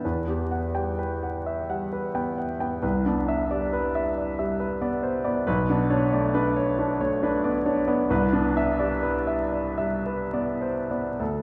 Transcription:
0.05 2.80 E2 soft
0.05 0.42 B4 soft
0.27 0.65 B3 soft
0.27 0.65 G4 soft
0.51 0.89 F#5 soft
0.75 1.13 G3 soft
0.75 1.12 G5 soft
0.99 1.36 B4 soft
1.23 1.60 F#5 soft
1.46 1.69 E5 soft
1.70 2.06 G3 soft
1.70 2.06 F#5 soft
1.92 2.29 B4 soft
2.15 2.51 B3 soft
2.15 2.51 G5 soft
2.38 2.61 F#5 soft
2.60 2.83 B3 soft
2.60 2.83 G5 soft
2.83 5.43 C2 medium
2.83 3.19 B4 soft
3.06 3.42 B3 soft
3.06 3.42 D4 medium
3.28 3.64 E5 medium
3.51 3.86 G3 soft
3.51 3.86 D5 medium
3.73 4.08 B4 medium
3.95 4.30 E5 medium
4.18 4.39 D5 soft
4.39 4.73 G3 medium
4.39 4.73 E5 medium
4.60 4.95 B4 medium
4.81 5.16 B3 medium
4.81 5.16 D5 medium
5.03 5.25 C5 soft
5.24 5.47 B3 medium
5.24 5.46 D5 medium
5.47 8.06 B1 medium
5.47 5.82 B4 medium
5.70 6.04 B3 medium
5.70 5.89 D4 medium
5.90 6.25 D4 medium
5.90 6.25 C#5 medium
6.12 6.48 A3 medium
6.12 6.47 D5 medium
6.34 6.70 D4 medium
6.34 6.69 B4 medium
6.56 6.92 C#5 medium
6.79 7.14 D4 medium
6.79 7.01 B4 soft
7.01 7.35 A3 medium
7.01 7.35 C#5 medium
7.23 7.57 D4 medium
7.23 7.57 B4 medium
7.44 7.79 B3 medium
7.44 7.79 D5 medium
7.66 8.01 D4 medium
7.66 7.88 C#5 medium
7.88 8.10 B3 medium
7.88 8.10 D5 medium
8.10 11.16 C2 medium
8.10 8.46 B4 medium
8.33 8.70 B3 medium
8.33 8.69 D4 medium
8.57 8.94 E5 medium
8.79 9.18 G3 medium
8.79 9.18 D5 medium
9.03 9.43 B4 medium
9.27 9.68 E5 soft
9.52 9.79 D5 soft
9.78 10.22 G3 soft
9.78 10.22 E5 soft
10.06 10.50 B4 soft
10.33 10.79 B3 medium
10.33 10.79 D5 medium
10.61 10.90 C5 soft
10.91 11.20 B3 soft
10.91 11.20 D5 soft
11.20 11.42 D2 medium
11.20 11.42 A4 soft

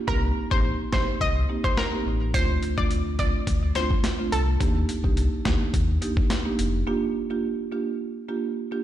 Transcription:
0.07 0.33 C2 loud
0.07 0.27 A#3 medium
0.07 0.27 C4 medium
0.07 0.27 D#4 medium
0.07 0.27 G4 loud
0.07 0.18 A#4 loud
0.07 kick loud
0.51 0.76 A1 medium
0.51 0.69 A#3 medium
0.51 0.69 C4 medium
0.51 0.70 D#4 medium
0.51 0.70 G4 medium
0.51 0.71 C5 medium
0.51 kick medium
0.92 1.06 A#1 medium
0.92 1.12 A#3 medium
0.92 1.12 C4 medium
0.92 1.12 D#4 medium
0.92 1.12 G4 medium
0.92 1.13 C5 medium
0.92 kick loud
0.92 snare loud
1.21 1.46 C2 loud
1.21 1.32 D#5 medium
1.21 kick medium
1.49 1.69 A#3 medium
1.49 1.69 C4 medium
1.49 1.69 D#4 medium
1.49 1.69 G4 medium
1.64 1.74 C5 medium
1.64 kick loud
1.77 2.18 A#4 medium
1.77 snare loud
1.92 2.11 A#3 medium
1.92 2.11 C4 medium
1.92 2.11 D#4 medium
1.92 2.11 G4 medium
2.06 2.36 A1 medium
2.34 2.59 D2 loud
2.34 2.54 A3 medium
2.34 2.54 C4 medium
2.34 2.54 D4 medium
2.34 2.54 F4 loud
2.34 2.45 C5 loud
2.34 kick loud
2.34 closed hi-hat medium
2.63 closed hi-hat soft
2.77 3.02 D2 medium
2.77 2.96 A3 medium
2.77 2.96 C4 medium
2.77 2.96 D4 medium
2.77 2.96 F4 medium
2.77 2.98 D5 medium
2.77 kick medium
2.91 closed hi-hat medium
3.19 3.32 C2 medium
3.19 3.39 A3 medium
3.19 3.39 C4 medium
3.19 3.39 D4 medium
3.19 3.39 F4 medium
3.19 3.39 D5 medium
3.19 kick loud
3.19 closed hi-hat soft
3.47 3.72 D2 loud
3.47 kick medium
3.47 closed hi-hat medium
3.75 3.95 A3 medium
3.75 3.95 C4 medium
3.75 3.95 D4 medium
3.75 3.96 F4 medium
3.75 3.86 C5 medium
3.75 snare medium
3.75 closed hi-hat medium
3.90 kick medium
4.04 snare loud
4.04 closed hi-hat medium
4.19 4.37 A3 medium
4.19 4.37 C4 medium
4.19 4.38 D4 medium
4.19 4.38 F4 medium
4.32 4.57 C2 medium
4.32 4.43 A4 medium
4.32 closed hi-hat medium
4.60 4.85 D#2 loud
4.60 4.80 A#3 medium
4.60 4.80 D4 medium
4.60 4.80 D#4 medium
4.60 4.80 G4 loud
4.60 kick loud
4.60 closed hi-hat medium
4.89 closed hi-hat soft
5.04 5.29 C2 medium
5.04 5.22 A#3 medium
5.04 5.22 D4 medium
5.04 5.22 D#4 medium
5.04 5.23 G4 medium
5.04 kick medium
5.17 closed hi-hat medium
5.45 5.59 D2 medium
5.45 5.65 A#3 medium
5.45 5.65 D4 medium
5.45 5.65 D#4 medium
5.45 5.65 G4 medium
5.45 kick loud
5.45 snare loud
5.45 closed hi-hat soft
5.74 5.99 D#2 loud
5.74 kick medium
5.74 closed hi-hat medium
6.02 6.21 A#3 medium
6.02 6.22 D4 medium
6.02 6.22 D#4 medium
6.02 6.22 G4 medium
6.02 closed hi-hat medium
6.17 kick medium
6.30 snare loud
6.30 closed hi-hat medium
6.45 6.64 A#3 medium
6.45 6.64 D4 medium
6.45 6.64 D#4 medium
6.45 6.64 G4 medium
6.59 6.84 F1 medium
6.59 closed hi-hat medium
6.87 7.06 A#3 medium
6.87 7.07 D4 medium
6.87 7.07 F4 medium
6.87 7.07 G4 loud
7.30 7.49 A#3 medium
7.30 7.49 D4 medium
7.30 7.49 F4 medium
7.30 7.49 G4 medium
7.72 7.91 A#3 medium
7.72 7.92 D4 medium
7.72 7.92 F4 medium
7.72 7.92 G4 medium
8.28 8.48 A#3 medium
8.28 8.48 D4 medium
8.28 8.48 F4 medium
8.28 8.48 G4 medium
8.72 8.84 A#3 medium
8.72 8.84 D4 medium
8.72 8.84 F4 medium
8.72 8.84 G4 medium

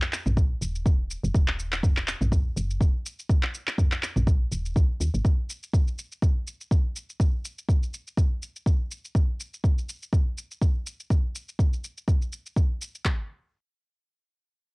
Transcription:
0.02 clap loud
0.02 shaker soft
0.13 clap loud
0.13 shaker loud
0.26 0.55 A#1 medium
0.26 mid tom medium
0.26 shaker soft
0.37 kick loud
0.37 shaker medium
0.61 1.16 D#1 medium
0.61 shaker loud
0.75 shaker soft
0.86 kick loud
0.86 shaker medium
1.11 shaker loud
1.23 1.31 F#1 loud
1.23 shaker soft
1.34 2.14 D#1 loud
1.34 kick loud
1.34 shaker medium
1.48 clap medium
1.59 shaker loud
1.72 clap medium
1.72 shaker soft
1.83 kick loud
1.83 mid tom medium
1.83 shaker medium
1.97 clap medium
1.97 shaker soft
2.08 clap medium
2.08 shaker loud
2.21 2.50 A#1 medium
2.21 mid tom medium
2.21 shaker soft
2.32 kick loud
2.32 mid tom medium
2.32 shaker medium
2.56 2.82 F#1 loud
2.56 shaker loud
2.71 shaker soft
2.81 2.90 D#1 medium
2.81 kick loud
2.81 shaker medium
3.06 shaker loud
3.19 shaker soft
3.30 kick loud
3.30 shaker medium
3.43 clap medium
3.55 shaker medium
3.67 clap medium
3.67 shaker soft
3.78 kick loud
3.78 mid tom medium
3.78 shaker medium
3.92 clap medium
3.92 shaker soft
4.03 clap medium
4.03 shaker medium
4.16 4.46 A#1 medium
4.16 mid tom medium
4.16 shaker soft
4.27 kick loud
4.27 shaker medium
4.52 4.75 D#1 medium
4.52 shaker medium
4.66 shaker soft
4.76 4.85 C#2 medium
4.76 kick loud
4.76 shaker medium
5.00 5.09 D#2 medium
5.00 shaker loud
5.14 5.21 G#1 loud
5.14 shaker soft
5.25 kick loud
5.25 shaker soft
5.50 shaker medium
5.63 shaker soft
5.74 kick loud
5.74 shaker soft
5.88 shaker soft
5.99 shaker medium
6.12 shaker soft
6.22 kick loud
6.22 shaker medium
6.47 shaker medium
6.61 shaker soft
6.71 kick loud
6.71 shaker soft
6.96 shaker medium
7.10 shaker soft
7.20 kick loud
7.20 shaker soft
7.45 shaker medium
7.58 shaker soft
7.69 kick loud
7.69 shaker soft
7.83 shaker soft
7.94 shaker medium
8.07 shaker soft
8.17 kick loud
8.17 shaker soft
8.43 shaker medium
8.56 shaker soft
8.66 kick loud
8.66 shaker soft
8.91 shaker medium
9.05 shaker soft
9.15 kick loud
9.15 shaker soft
9.40 shaker medium
9.54 shaker soft
9.64 kick loud
9.64 shaker soft
9.78 shaker soft
9.89 shaker medium
10.03 shaker soft
10.13 kick loud
10.13 shaker soft
10.38 shaker medium
10.51 shaker soft
10.61 kick loud
10.61 shaker soft
10.87 shaker medium
11.00 shaker soft
11.10 kick loud
11.10 shaker soft
11.35 shaker medium
11.49 shaker soft
11.59 kick loud
11.59 shaker soft
11.73 shaker soft
11.84 shaker medium
11.98 shaker soft
12.08 kick loud
12.08 shaker soft
12.22 shaker soft
12.33 shaker medium
12.46 shaker soft
12.56 kick loud
12.56 shaker soft
12.82 shaker medium
12.95 shaker soft
13.05 kick loud
13.05 clap medium

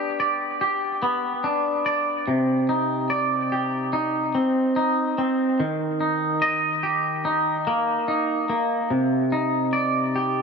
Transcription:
0.00 1.01 B3 medium
0.00 1.43 D4 medium
0.00 0.60 G4 medium
0.00 0.19 D5 medium
0.20 1.85 D5 medium
0.61 2.27 G4 medium
1.02 2.27 B3 medium
1.44 2.27 D4 medium
1.86 2.27 D5 medium
2.28 4.35 C3 medium
2.69 3.93 D#4 medium
3.10 5.17 D5 medium
3.52 6.83 G4 medium
3.93 4.76 D#4 medium
4.35 5.17 C4 medium
4.76 6.00 D#4 medium
5.18 5.59 C4 medium
5.60 7.67 D#3 medium
6.01 7.24 D#4 medium
6.42 8.50 D#5 medium
6.83 10.15 G4 medium
7.25 8.07 D#4 medium
7.67 8.48 A#3 medium
8.08 8.91 D#4 medium
8.49 8.91 A#3 medium
8.90 10.42 C3 medium
9.32 10.42 D#4 medium
9.73 10.42 D5 medium
10.16 10.42 G4 medium

